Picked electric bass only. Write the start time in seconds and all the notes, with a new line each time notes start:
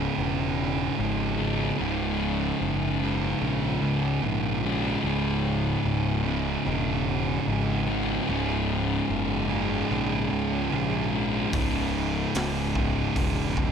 0.18 E1
0.99 G#1
1.80 C#1
2.61 F#1
3.42 A#1
3.82 C#2
4.23 A#1
5.04 C#1
5.85 C#1
6.66 E1
7.47 G#1
8.29 C#1
9.10 F#1
9.91 A#1
10.32 C#2
10.72 A#1
11.53 C#1
12.35 C#1
13.16 E1